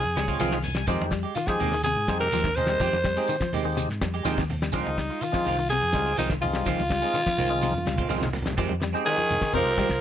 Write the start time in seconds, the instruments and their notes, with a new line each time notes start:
Already playing: alto saxophone G#4
0.04 fingered electric bass F2, muted clean electric guitar stroke
0.15 fingered electric bass C#2, clean electric guitar G3, tonewheel organ C#5, muted clean electric guitar stroke, snare, closed hi-hat, high conga, shekere
0.28 clean electric guitar G#3 C4 F4, kick, closed hi-hat
0.39 fingered electric bass C2, clean electric guitar D#3 F3 C4 F4, tonewheel organ G#3 C4 D#4 F4 F5, muted clean electric guitar stroke, closed hi-hat, high conga, shekere
0.51 clean electric guitar D#3, snare
0.62 tonewheel organ G#5, muted clean electric guitar stroke, snare, open hi-hat, low conga, shekere
0.75 clean electric guitar G3, muted clean electric guitar stroke, snare, closed hi-hat
0.87 fingered electric bass F2, clean electric guitar D#3 F3 G#3 C4 G4, tonewheel organ G#3 C4 D#4 G4, kick, closed hi-hat, shekere
1.01 fingered electric bass F2, high conga
1.11 clean electric guitar G3, muted clean electric guitar stroke, kick, snare, closed hi-hat, shekere
1.23 clean electric guitar G#3 G4
1.35 clean electric guitar D#3, alto saxophone F4, muted clean electric guitar stroke, closed hi-hat, high conga, shekere
1.47 clean electric guitar F3, tonewheel organ G#3 C4 D#4 G4, alto saxophone G#4, muted clean electric guitar stroke, muted fingered electric bass stroke, kick, snare, high conga
1.60 fingered electric bass D#2, clean electric guitar D#3 G#3 C4, muted clean electric guitar stroke, open hi-hat, low conga, shekere
1.72 clean electric guitar D#3, muted clean electric guitar stroke, snare
1.83 clean electric guitar C3, alto saxophone G#4, closed hi-hat, high conga, shekere
1.96 fingered electric bass G#2, muted clean electric guitar stroke
2.08 fingered electric bass F2, clean electric guitar G3, tonewheel organ G#3 C4 D#4 G4, muted clean electric guitar stroke, kick, snare, closed hi-hat, high conga, shekere
2.19 clean electric guitar G#3 G4, alto saxophone A#4, low conga
2.31 fingered electric bass D#2, clean electric guitar D#3 F3 G#3 C4 G4, closed hi-hat, high conga, shekere
2.44 clean electric guitar D#3, kick, snare
2.56 tonewheel organ G#3 C4 D#4 A#4, alto saxophone C5, muted clean electric guitar stroke, snare, open hi-hat, low conga, shekere
2.67 clean electric guitar G3, muted clean electric guitar stroke, snare, closed hi-hat
2.79 fingered electric bass F2, clean electric guitar D#3 F3 G#3 C4 G4, kick, closed hi-hat, high conga, shekere
2.93 fingered electric bass F2, high conga
3.04 clean electric guitar G3, muted clean electric guitar stroke, kick, snare, closed hi-hat, shekere
3.16 tonewheel organ G#3 C4 D#4 G4, clean electric guitar G#3 C4 G4, snare, closed hi-hat
3.27 clean electric guitar D#3, muted clean electric guitar stroke, closed hi-hat, high conga, shekere
3.40 clean electric guitar F3, muted fingered electric bass stroke, muted clean electric guitar stroke, kick, snare, high conga
3.53 fingered electric bass D#2, clean electric guitar D#3 G#3 C4 G4, open hi-hat, low conga, shekere
3.64 clean electric guitar D#3, tonewheel organ G#3 C4 D#4 G4, muted clean electric guitar stroke
3.77 clean electric guitar C3, closed hi-hat, high conga, shekere
3.89 fingered electric bass G#2, muted clean electric guitar stroke, snare
4.01 fingered electric bass F2, clean electric guitar G3, muted clean electric guitar stroke, kick, snare, closed hi-hat, high conga, shekere
4.14 clean electric guitar G#3 G4, closed hi-hat
4.23 fingered electric bass D#2, clean electric guitar D#3 F3 G#3 C4 G4, tonewheel organ G#3 C4 D#4 G4, snare, closed hi-hat, high conga, shekere
4.38 clean electric guitar D#3, kick, snare, high conga
4.49 muted clean electric guitar stroke, open hi-hat, low conga, shekere
4.62 clean electric guitar G3, muted clean electric guitar stroke, snare, closed hi-hat
4.72 fingered electric bass C#2, clean electric guitar D#3 F3 G#3 C4 F4, tonewheel organ G#3 C4 D#4 F4, alto saxophone D#4, kick, closed hi-hat, shekere
4.86 fingered electric bass C#2, high conga
4.97 clean electric guitar G3, muted clean electric guitar stroke, kick, snare, closed hi-hat, shekere
5.10 clean electric guitar G#3 F4
5.21 clean electric guitar D#3, alto saxophone F4, muted clean electric guitar stroke, closed hi-hat, high conga, shekere
5.32 clean electric guitar F3, tonewheel organ G#3 C4 D#4 F4, muted clean electric guitar stroke, muted fingered electric bass stroke, kick, snare, high conga
5.45 fingered electric bass C2, clean electric guitar D#3 C4 F4, open hi-hat, low conga, shekere
5.58 clean electric guitar D#3, muted clean electric guitar stroke
5.69 clean electric guitar C3, alto saxophone G#4, closed hi-hat, high conga, shekere
5.82 fingered electric bass F2, muted clean electric guitar stroke
5.93 fingered electric bass C#2, clean electric guitar G3, tonewheel organ G#3 C4 D#4 F4, muted clean electric guitar stroke, kick, snare, closed hi-hat, high conga, shekere
6.06 clean electric guitar C4 F4
6.17 fingered electric bass C2, clean electric guitar D#3 F3 G#3 C4 F4, alto saxophone D#4, closed hi-hat, high conga, shekere
6.29 clean electric guitar D#3, kick, snare
6.41 tonewheel organ G#3 C4 D#4 F4, alto saxophone F4, muted clean electric guitar stroke, open hi-hat, high conga, low conga, shekere
6.53 clean electric guitar G3, muted clean electric guitar stroke, snare, closed hi-hat
6.66 fingered electric bass C#2, clean electric guitar D#3 F3 G#3 C4 F4, kick, closed hi-hat, high conga, shekere
6.79 fingered electric bass C#2, high conga
6.90 clean electric guitar G3, muted clean electric guitar stroke, kick, snare, closed hi-hat, shekere
7.02 tonewheel organ G#3 C4 D#4 F4, clean electric guitar G#3 C4 F4, closed hi-hat
7.14 clean electric guitar D#3, muted clean electric guitar stroke, closed hi-hat, high conga, shekere
7.26 clean electric guitar F3, muted fingered electric bass stroke, muted clean electric guitar stroke, kick, snare, high conga
7.38 fingered electric bass C2, clean electric guitar D#3 G#3 C4 F4, closed hi-hat, low conga, shekere
7.49 clean electric guitar D#3, tonewheel organ G#3 C4 D#4 F4, muted clean electric guitar stroke
7.62 clean electric guitar C3, closed hi-hat, high conga, shekere
7.71 fingered electric bass F2, muted clean electric guitar stroke, high conga
7.78 high conga
7.86 fingered electric bass C#2, clean electric guitar G3, muted clean electric guitar stroke, snare, closed hi-hat, shekere
7.94 low conga
7.98 clean electric guitar G#3 C4 F4, kick, closed hi-hat
8.02 low conga
8.08 fingered electric bass C2, clean electric guitar D#3 F3 G#3 C4 F4, tonewheel organ G#3 C4 D#4 F4, closed hi-hat, low conga, shekere
8.18 snare, low conga
8.23 clean electric guitar D#3, low conga
8.33 muted clean electric guitar stroke, snare, open hi-hat, low conga, shekere
8.42 muted clean electric guitar stroke, snare, closed hi-hat, low conga
8.47 clean electric guitar G3, low conga
8.57 fingered electric bass F2, clean electric guitar D#3 F3 G#3 C4 G4, kick, closed hi-hat, high conga
8.69 fingered electric bass F2, high conga
8.80 clean electric guitar G3, muted clean electric guitar stroke, snare, closed hi-hat
8.93 clean electric guitar G#3 C4, tonewheel organ G#3 C4 D#4 G4, snare
9.05 clean electric guitar D#3, tenor saxophone D#3, alto saxophone G#4, muted clean electric guitar stroke, closed hi-hat, high conga
9.17 clean electric guitar F3, muted clean electric guitar stroke, high conga
9.30 fingered electric bass F2, closed hi-hat, low conga
9.41 clean electric guitar D#3, muted fingered electric bass stroke, kick, snare
9.53 fingered electric bass F2, clean electric guitar C3, tenor saxophone F3, tonewheel organ G#3 C4 D#4 G4, alto saxophone A#4, kick, closed hi-hat, high conga
9.65 fingered electric bass C2, muted clean electric guitar stroke
9.77 clean electric guitar G3 G#3 C4 G4, muted clean electric guitar stroke, kick, closed hi-hat, high conga
9.89 fingered electric bass C2, muted clean electric guitar stroke, kick, snare, closed hi-hat